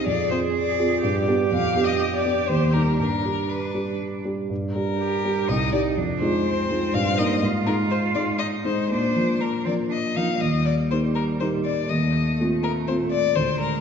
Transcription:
0.06 F2 G#4 D5
0.31 C4 F4 G#4 C5
0.55 D5
0.79 C4 F4 G#4
1.03 G2 G4
1.28 B3 D4 G4
1.52 F2 F5
1.76 B3 D4 G4
1.84 D#5
2.16 D5
2.25 B3 D4 G4
2.49 D#2 C5
2.73 G3 D#4 G4 A#4
2.99 G2 D4 A#4
3.24 G3 D4 G4
3.49 B4
3.74 G3 D4 G4
4.25 G3 D4 G4
4.50 G2
4.75 G3 D4 G4 A#4
4.99 G4
5.25 G3 D4 G4
5.49 C2 D#4 D#5
5.72 G3 D#4 G4 D5
5.97 F2 D4
6.21 G#3 D#4 F4 C5
6.46 C4
6.70 G#3 D#4 F4
6.94 G2 F5
7.18 A#3 D#4 D#5
7.42 G#2 F4
7.67 G#3 D#4 A#4
7.91 C5
8.15 G#3 D#4 D5
8.38 D#4 D#5
8.64 G#3 D#4 C5
8.89 A#2 D4 C5
9.16 F3 A#3 D4
9.40 D4 A#4
9.64 F3 A#3 C4 D4 D5
9.89 D4 D#5
10.15 F3 A#3 D4 D#4 F5
10.41 D#2 G3 D#5
10.66 D5
10.91 G3 A#3 D#4 C5
11.15 A#4
11.40 G3 A#3 D#4 C5
11.65 D5
11.89 D#2 A3 D#5
12.40 A3 C4 F4
12.63 A#4
12.88 A3 C4 F4 C5
13.11 D5
13.35 D2 G#3 C5
13.60 A#4

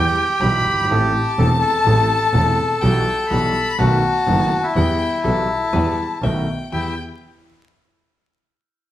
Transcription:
Already playing: E2 E3 G3 B3 G4 G5
0.41 B1 B2 E3 G3 B3 G4 B5
0.65 G1
0.73 F#1
0.79 G1
0.85 G#1
0.90 A1 A2 E3 A3 C4 A4 A5
1.38 E1 E2 E3 A3 C4 A4
1.61 A4
1.86 A1 A2 E3 A3 C4 A4
2.34 E1 E2 E3 A3 C4 A4
2.82 B1 B2 E3 G3 B3 G4 G5
3.30 B1 B2 E3 G3 B3 G4 B5
3.78 B1 B2 D#3 A3 B3 F#4 A5
4.27 F#1 F#2 D#3 A3 B3 F#4
4.63 E4
4.76 E2 E3 G3 B3 G4 G5
5.24 B1 B2 E3 G3 B3 G4 A4 A5
5.73 E2 E3 G3 B3 G4 B4
6.22 B1 B2 D#3 A3 B3 F#4 E5 G5
6.72 E2 B3 E4 G4 G5

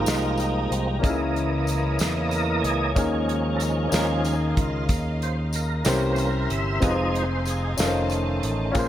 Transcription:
Already playing: G#2 F3 G#3 A#3 D#4 F4 G4 G#4 D#5 G5 A#5
0.06 C2, snare, closed hi-hat, tambourine
0.38 D#4, closed hi-hat, tambourine
0.71 C2 C4, closed hi-hat
0.87 A#3
0.99 C#3 E3 A#3 C#4 D#4
1.03 C#2 E4 G#4 A#4 C#5 D#5, kick, closed hi-hat, tambourine
1.09 E4
1.36 closed hi-hat
1.67 closed hi-hat, tambourine
1.99 E2, snare, closed hi-hat, tambourine
2.29 A#4, closed hi-hat, tambourine
2.62 C#2 G#4, closed hi-hat
2.95 D#2 D#3 F3 G#3 A#3 C#4 D#4 G#4 A#4 D#5, kick, closed hi-hat, tambourine
3.25 G#4
3.29 closed hi-hat
3.53 A4 A#4
3.60 closed hi-hat, tambourine
3.89 D#2 D#3 F3 G#3 C#4 D#4 F4 G#4 F5, tambourine
3.93 C#4 G#4 A#4, snare, closed hi-hat
4.24 G#4, closed hi-hat, tambourine
4.52 G#4
4.57 C#2 F4, kick, closed hi-hat
4.89 D#2, kick, closed hi-hat, tambourine
5.22 C5, closed hi-hat
5.53 A#4, closed hi-hat, tambourine
5.85 C2 C3 E3 A#3 C#4 E4 G4 A#4 C5 E5 A#5 C6, snare, closed hi-hat, tambourine
6.12 C5, tambourine
6.18 A#4, closed hi-hat
6.50 G1 E5, closed hi-hat
6.80 F1 F3 G#3 C4 D#4 F4 G#4 B4 D#5, kick, closed hi-hat, tambourine
6.84 D#5 F5 G#5
6.91 C5
7.14 C5, closed hi-hat
7.45 G#4, closed hi-hat, tambourine
7.77 F1 D#3 A3 C#4 D#4 F4 A4 A5, snare, closed hi-hat, tambourine
7.81 A#4
7.87 C5
8.10 closed hi-hat, tambourine
8.43 A1, closed hi-hat
8.72 A#1 A#2 C#3 G#3 C#4 F4 G#4, kick, closed hi-hat, tambourine
8.76 A#4 C5 G#5 A#5 C6

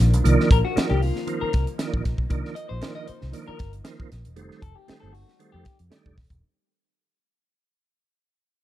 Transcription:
Already playing: D#3 F3 A#3 D4
0.00 A#1, closed hi-hat
0.14 B1, closed hi-hat
0.24 C2 D#3 F3 A#3 D4, closed hi-hat
0.40 snare
0.51 A#1 A#4, kick, closed hi-hat
0.65 F#4
0.75 D#3 F3 A#3 D4, muted fingered electric bass stroke, snare, closed hi-hat
0.90 C2 G4
1.02 F4, open hi-hat
1.16 snare
1.27 D#3 F3 A#3 C4 D#4, closed hi-hat
1.41 A#4, muted fingered electric bass stroke
1.53 C2, kick, snare, closed hi-hat
1.67 closed hi-hat
1.78 D#3 F3 A#3 D4, snare, closed hi-hat
1.94 A#1, kick
2.05 A#1, kick, snare, closed hi-hat
2.18 B1, kick
2.30 C2 D#3 F3 A#3 D4, kick, closed hi-hat
2.45 snare
2.55 D#5, closed hi-hat
2.69 A#1 C5
2.81 D#3 F3 A#3 D4, snare, closed hi-hat
2.95 D#5
3.07 C5, muted fingered electric bass stroke, closed hi-hat
3.21 C2, snare
3.32 D#3 F3 A#3 D4, closed hi-hat
3.47 A#4, muted fingered electric bass stroke
3.59 G1, kick, snare, closed hi-hat
3.73 closed hi-hat
3.84 D#3 F3 A#3 C4, snare, closed hi-hat
4.00 kick
4.11 A#1, snare, closed hi-hat
4.25 E1, closed hi-hat
4.36 F1 D#3 G3 A3 C4, closed hi-hat
4.51 snare
4.62 F1 A4, kick, closed hi-hat
4.75 G4
4.88 D#3 G3 A3 C4, muted fingered electric bass stroke, snare, closed hi-hat
5.00 G1 A4
5.12 F#4, open hi-hat
5.28 snare
5.39 D#3 G3 A3 C4, closed hi-hat
5.52 F2 G4
5.65 kick, snare, closed hi-hat
5.79 F2, closed hi-hat
5.90 D#3 G3 A3 D4, snare, closed hi-hat
6.06 F1, kick
6.17 D#1, kick, snare, open hi-hat
6.30 E1, kick, closed hi-hat

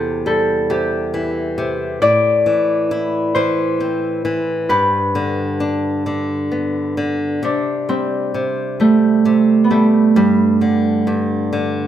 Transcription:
Already playing: E2 C3 A4 C5
0.26 G3 A4
0.70 C3 G4
1.14 E3
1.58 C3
2.02 A2 D5
2.46 E3
2.91 E4
3.35 E3 C5
3.80 C4
4.25 E3
4.69 G2 B4
5.15 D3
5.60 D4
6.06 D3
6.52 B3
6.97 D3
7.43 C3 D4
7.89 G3 C4
8.34 C3
8.80 G3 A3
9.25 C3
9.64 B3
9.71 G3 A3
10.16 G2 G3
10.61 D3
11.07 G2
11.53 D3

